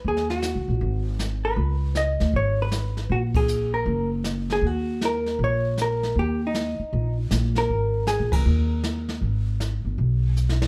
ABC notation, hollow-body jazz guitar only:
X:1
M:4/4
L:1/8
Q:"Swing" 1/4=157
K:G#m
V:1 name="Hollow-body jazz guitar"
G F4 z2 B- | B2 d2 c B3 | F G2 A2 z2 G | F2 A2 c2 A2 |
=G D4 z2 A- | A2 G A4- A- | A6 z2 |]